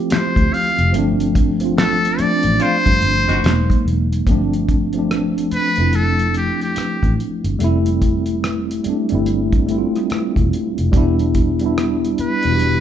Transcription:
0.00 0.92 F3 medium
0.00 0.94 A3 medium
0.00 0.95 C4 medium
0.00 0.95 F4 medium
0.00 0.80 G4 medium
0.10 0.55 C5 medium
0.10 finger snap medium
0.10 muted fingered electric bass stroke soft
0.10 snare medium
0.10 closed hi-hat medium
0.36 0.50 D2 medium
0.36 kick medium
0.36 closed hi-hat soft
0.53 0.94 F5 loud
0.53 open hi-hat soft
0.78 0.93 F1 medium
0.78 closed hi-hat medium
0.92 2.14 G1 medium
0.92 1.48 F3 medium
0.92 1.48 A3 medium
0.92 1.49 C4 medium
0.92 closed hi-hat medium
0.97 1.50 D4 loud
1.20 closed hi-hat medium
1.35 kick medium
1.35 closed hi-hat medium
1.60 2.10 F3 medium
1.60 2.11 A3 medium
1.60 2.12 C4 medium
1.60 closed hi-hat medium
1.65 2.13 F4 medium
1.78 2.22 A4 loud
1.78 finger snap medium
1.78 snare loud
1.78 closed hi-hat medium
2.05 closed hi-hat medium
2.18 3.43 F3 medium
2.18 3.44 A3 medium
2.18 3.44 C4 medium
2.18 2.64 D5 loud
2.18 muted fingered electric bass stroke soft
2.18 closed hi-hat medium
2.23 3.45 D4 medium
2.43 2.58 A1 medium
2.43 closed hi-hat soft
2.59 2.76 C4 medium
2.59 2.76 D4 medium
2.59 2.76 F4 medium
2.59 3.86 C5 loud
2.59 closed hi-hat medium
2.86 3.00 G2 medium
2.86 kick medium
2.86 closed hi-hat medium
3.02 3.24 G1 medium
3.02 closed hi-hat medium
3.27 3.41 G1 medium
3.27 3.55 B2 medium
3.27 3.55 D#4 medium
3.27 3.55 F#4 medium
3.27 snare soft
3.27 closed hi-hat soft
3.42 3.66 E1 loud
3.42 4.16 F#3 medium
3.42 4.17 G#3 medium
3.42 4.18 A#3 medium
3.42 finger snap medium
3.42 snare loud
3.42 closed hi-hat medium
3.48 4.19 D#4 medium
3.70 kick medium
3.70 closed hi-hat soft
3.85 4.21 E1 medium
3.85 closed hi-hat medium
4.13 closed hi-hat medium
4.26 5.48 G1 medium
4.26 4.81 F3 loud
4.26 4.82 A3 medium
4.26 4.83 C4 medium
4.26 kick loud
4.26 closed hi-hat medium
4.31 4.84 D4 loud
4.54 closed hi-hat soft
4.69 kick medium
4.69 closed hi-hat medium
4.93 5.60 F3 medium
4.93 5.61 A3 medium
4.93 closed hi-hat soft
4.97 5.62 C4 medium
4.97 5.63 D4 medium
5.11 cross-stick loud
5.11 closed hi-hat medium
5.38 closed hi-hat medium
5.51 5.97 B4 medium
5.51 muted fingered electric bass stroke soft
5.51 closed hi-hat medium
5.76 6.49 F1 medium
5.76 7.13 F3 medium
5.76 7.14 A3 medium
5.76 closed hi-hat soft
5.80 7.14 C4 medium
5.80 7.15 E4 medium
5.93 6.36 A4 medium
5.93 closed hi-hat medium
6.19 closed hi-hat soft
6.34 6.60 G4 medium
6.34 closed hi-hat medium
6.61 7.15 G4 medium
6.61 closed hi-hat soft
6.76 muted fingered electric bass stroke soft
6.76 cross-stick medium
6.76 closed hi-hat medium
7.03 7.16 A1 medium
7.03 kick medium
7.03 closed hi-hat soft
7.20 closed hi-hat soft
7.44 7.57 G1 medium
7.44 closed hi-hat soft
7.59 8.81 F1 medium
7.59 8.69 G3 loud
7.59 8.70 A3 medium
7.59 8.71 C4 medium
7.59 closed hi-hat medium
7.64 8.72 E4 loud
7.86 closed hi-hat soft
8.02 kick medium
8.02 closed hi-hat medium
8.26 closed hi-hat soft
8.44 cross-stick loud
8.44 closed hi-hat medium
8.71 closed hi-hat soft
8.84 9.06 G3 medium
8.84 9.07 A3 medium
8.84 9.08 C4 medium
8.84 muted fingered electric bass stroke soft
8.84 closed hi-hat medium
8.89 9.09 D4 medium
9.09 9.83 G1 medium
9.09 9.60 G3 medium
9.09 9.61 A3 medium
9.09 closed hi-hat soft
9.13 9.62 C4 medium
9.13 9.62 E4 medium
9.26 closed hi-hat medium
9.53 kick medium
9.53 closed hi-hat soft
9.67 10.77 G3 medium
9.67 10.78 A3 medium
9.67 10.79 C4 medium
9.67 closed hi-hat medium
9.72 9.78 E4 medium
9.78 10.83 F4 medium
9.96 cross-stick soft
9.96 closed hi-hat soft
10.10 muted fingered electric bass stroke soft
10.10 cross-stick medium
10.10 closed hi-hat medium
10.36 10.50 E1 medium
10.36 kick medium
10.36 closed hi-hat soft
10.53 closed hi-hat soft
10.78 10.92 F1 medium
10.78 closed hi-hat soft
10.92 12.14 E1 medium
10.92 11.48 G3 loud
10.92 11.49 B3 medium
10.92 11.49 D4 medium
10.92 kick loud
10.92 closed hi-hat medium
10.98 11.50 E4 loud
11.19 closed hi-hat soft
11.35 kick medium
11.35 closed hi-hat medium
11.59 12.27 G3 medium
11.59 12.28 B3 medium
11.59 closed hi-hat soft
11.64 12.29 D4 medium
11.64 12.30 E4 medium
11.78 cross-stick loud
11.78 closed hi-hat medium
12.05 closed hi-hat medium
12.18 12.80 B4 medium
12.18 muted fingered electric bass stroke soft
12.18 closed hi-hat medium
12.43 12.80 E1 medium
12.43 12.80 B2 medium
12.43 12.80 G3 medium
12.43 closed hi-hat soft
12.47 12.80 D4 medium
12.47 12.51 F#4 medium
12.56 12.80 G4 medium
12.56 closed hi-hat medium

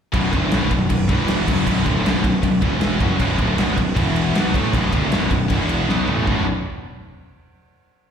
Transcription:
0.13 0.32 B0 loud
0.13 0.32 B1 medium
0.13 0.32 F#2 loud
0.13 0.33 B2 loud
0.13 kick loud
0.13 crash medium
0.32 0.51 D1 loud
0.32 0.51 D2 medium
0.32 0.51 A2 medium
0.32 0.52 D3 medium
0.32 kick loud
0.32 crash medium
0.51 0.70 B0 medium
0.51 0.69 B1 medium
0.51 0.70 F#2 medium
0.51 0.71 B2 loud
0.51 snare loud
0.51 crash medium
0.70 0.89 B0 medium
0.70 0.86 B1 medium
0.70 0.87 F#2 medium
0.70 kick loud
0.70 crash medium
0.90 1.08 B0 medium
0.90 1.09 B1 medium
0.90 1.06 F#2 medium
0.90 kick loud
0.90 crash medium
1.09 1.45 E1 loud
1.09 1.47 E2 medium
1.09 1.47 B2 medium
1.09 1.48 E3 loud
1.09 kick loud
1.09 crash medium
1.28 snare loud
1.28 crash medium
1.47 1.66 F#1 loud
1.47 1.66 F#2 medium
1.47 1.66 C#3 loud
1.47 1.67 F#3 loud
1.47 kick loud
1.47 crash loud
1.67 1.85 B0 medium
1.67 1.85 B1 loud
1.67 1.86 F#2 loud
1.67 1.86 B2 loud
1.67 kick loud
1.67 crash medium
1.86 2.04 D1 loud
1.86 2.05 D2 medium
1.86 2.05 A2 medium
1.86 2.05 D3 loud
1.86 kick loud
1.86 crash medium
2.04 2.22 B0 medium
2.04 2.23 B1 medium
2.04 2.23 F#2 loud
2.04 2.24 B2 loud
2.04 snare loud
2.04 crash medium
2.24 2.42 B0 medium
2.24 2.40 B1 medium
2.24 2.40 F#2 medium
2.24 kick loud
2.24 crash medium
2.43 2.61 B0 medium
2.43 2.59 B1 medium
2.43 2.59 F#2 medium
2.43 kick loud
2.43 crash medium
2.62 2.98 E1 loud
2.62 3.00 E2 medium
2.62 3.00 B2 medium
2.62 3.01 E3 loud
2.62 kick loud
2.62 crash medium
2.81 snare loud
2.81 crash medium
3.00 3.18 F#1 loud
3.00 3.18 F#2 medium
3.00 3.19 C#3 loud
3.00 3.19 F#3 loud
3.00 kick loud
3.00 crash medium
3.18 3.38 B0 loud
3.18 3.38 B1 medium
3.18 3.38 F#2 loud
3.18 3.38 B2 loud
3.18 kick loud
3.18 crash medium
3.38 3.57 D1 loud
3.38 3.57 D2 medium
3.38 3.57 A2 medium
3.38 3.58 D3 medium
3.38 kick loud
3.38 crash medium
3.58 3.76 B0 medium
3.58 3.77 B1 loud
3.58 3.77 F#2 loud
3.58 3.77 B2 medium
3.58 snare loud
3.58 crash medium
3.77 3.95 B0 medium
3.77 3.93 B1 medium
3.77 3.93 F#2 medium
3.77 kick medium
3.77 crash medium
3.96 4.32 E1 medium
3.96 4.35 E2 loud
3.96 4.34 B2 loud
3.96 4.35 E3 loud
3.96 kick loud
3.96 crash medium
4.16 crash medium
4.35 4.53 B1 medium
4.35 4.54 B2 loud
4.35 4.54 F#3 loud
4.35 4.54 B3 loud
4.35 snare loud
4.35 crash medium
4.54 4.72 A1 loud
4.54 4.72 A2 medium
4.54 4.73 E3 medium
4.54 4.73 A3 loud
4.54 kick loud
4.54 crash medium
4.73 4.91 B0 medium
4.73 4.92 B1 loud
4.73 4.92 F#2 loud
4.73 4.92 B2 loud
4.73 kick loud
4.73 crash medium
4.93 5.10 D1 loud
4.93 5.11 D2 medium
4.93 5.12 A2 medium
4.93 5.12 D3 loud
4.93 kick loud
4.93 crash medium
5.11 5.29 B0 loud
5.11 5.30 B1 medium
5.11 5.30 F#2 medium
5.11 5.31 B2 medium
5.11 snare loud
5.11 crash medium
5.31 5.48 B0 medium
5.31 5.47 B1 medium
5.31 5.47 F#2 medium
5.31 kick loud
5.31 crash medium
5.50 5.86 E1 loud
5.50 5.88 E2 medium
5.50 5.87 B2 medium
5.50 5.88 E3 loud
5.50 kick loud
5.50 crash medium
5.69 crash medium
5.88 6.07 B1 medium
5.88 6.07 B2 loud
5.88 6.07 F#3 loud
5.88 6.08 B3 loud
5.88 snare medium
6.08 6.26 A1 loud
6.08 6.27 A2 medium
6.08 6.27 E3 medium
6.08 6.27 A3 medium
6.08 floor tom medium
6.27 6.45 B0 medium
6.27 6.43 B1 medium
6.27 6.43 F#2 loud
6.27 6.43 B2 loud
6.27 6.43 F#3 loud
6.27 6.43 D4 loud
6.27 kick loud

